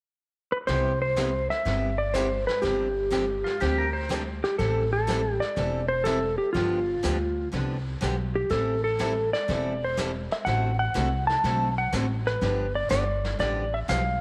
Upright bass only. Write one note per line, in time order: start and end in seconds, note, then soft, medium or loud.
0.68 1.46 C2 medium
1.65 2.44 G1 medium
2.63 3.41 G1 medium
3.61 4.39 D2 medium
4.59 5.37 A1 medium
5.57 6.35 E1 medium
6.55 6.94 G1 medium
7.04 7.45 D2 medium
7.53 7.94 C2 medium
8.02 8.43 B1 medium
8.51 9.29 A1 medium
9.49 10.27 E1 medium
10.47 10.86 A1 medium
10.95 11.37 C2 medium
11.44 11.86 B1 medium
11.93 12.34 A1 medium
12.42 12.81 G1 medium
12.91 13.32 G1 medium
13.39 13.81 A1 medium
13.89 14.21 B1 medium